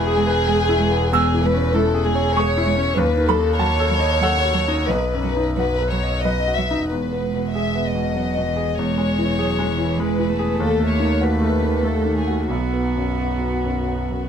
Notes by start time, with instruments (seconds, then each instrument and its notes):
Already playing: double bass E1, grand piano E2 B2 B3 E4 B5, violin section G#4
0.07 grand piano G#4
0.17 cello G#3
0.27 grand piano B4
0.47 cello G#3, grand piano G#4
0.69 grand piano E4
0.79 cello G#3
0.91 grand piano B3
1.12 grand piano E2 E6, cello G#3, violin section G#4
1.34 grand piano E3
1.43 cello G#3, violin section B4
1.53 grand piano C#4
1.73 cello G#3, grand piano E4, violin section A4
1.94 grand piano G#4
2.05 cello G#3, violin section G#4
2.15 grand piano C#5
2.35 cello G#3, grand piano G#4 C#6, violin section C#5
2.57 grand piano E4
2.65 cello G#3
2.76 grand piano C#4
2.96 double bass D#2, grand piano D#2, cello F#3, violin section B4
3.17 grand piano D#3
3.28 cello F#3, violin section A4, grand piano B5
3.39 grand piano D#4
3.57 cello F#3, grand piano F#4 A5, violin section C#5
3.80 grand piano A4
3.89 cello F#3
4.00 grand piano D#5
4.20 cello F#3, grand piano A4 F#5
4.45 grand piano F#4
4.54 cello F#3
4.68 grand piano D#4
4.87 double bass B1, grand piano B1 D#5, cello F#3, violin section B4
5.14 grand piano F#2
5.23 cello F#3
5.36 grand piano D#4
5.56 cello F#3, grand piano F#4, violin section B4
5.82 grand piano B4
5.89 cello F#3, violin section C#5
6.03 grand piano D#5
6.22 cello F#3, grand piano B4, violin section D#5
6.48 grand piano F#4
6.55 cello F#3, violin section E5
6.71 grand piano D#4
6.88 double bass E1, grand piano E2, cello G#3, violin section B4
7.13 grand piano B3
7.34 grand piano B2
7.53 grand piano G#4, violin section E5
7.76 grand piano B3
7.84 violin section D#5
7.95 grand piano B2
8.13 cello F#3, grand piano B3
8.37 grand piano B2
8.44 cello E3
8.56 grand piano G#4
8.76 grand piano E2, cello G#3, violin section C#5
8.98 grand piano G#3
9.19 grand piano E3
9.39 cello F#3, grand piano G#4
9.59 grand piano G#3
9.68 cello E3
9.78 grand piano E3
9.97 cello G#3, grand piano G#3, violin section B4
10.19 grand piano E3
10.29 cello A3
10.39 grand piano G#4
10.58 double bass D#2, grand piano D#2, violin section A4
10.80 grand piano A3
10.88 violin section C#5
11.00 grand piano D#3
11.20 cello A3, grand piano F#4, violin section B4
11.42 grand piano A3
11.62 grand piano D#3
11.83 grand piano A3, violin section A4
12.05 grand piano D#3
12.16 violin section G#4
12.27 grand piano F#4
12.49 double bass B1, grand piano B1, cello B3, violin section F#4
12.73 grand piano B3
12.96 grand piano F#2
13.19 grand piano F#4
13.42 grand piano B3
13.65 grand piano F#2
13.89 grand piano B3
14.11 grand piano F#2